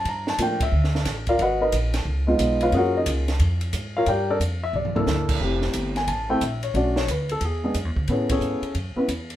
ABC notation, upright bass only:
X:1
M:4/4
L:1/8
Q:"Swing" 1/4=179
K:Gdor
V:1 name="Upright bass" clef=bass
G,,2 A,,2 D,,2 A,,,2 | _A,,,2 B,,,2 _D,,2 _C,,2 | _G,,2 _D,,2 F,,2 _A,,2 | G,,2 F,,2 C,,2 D,,2 |
F,,,2 G,,,2 A,,,2 B,,,2 | =B,,,2 D,,2 E,,2 (3^F,, E,, D,, | A,,2 ^G,, z _G,, z E,,2 |]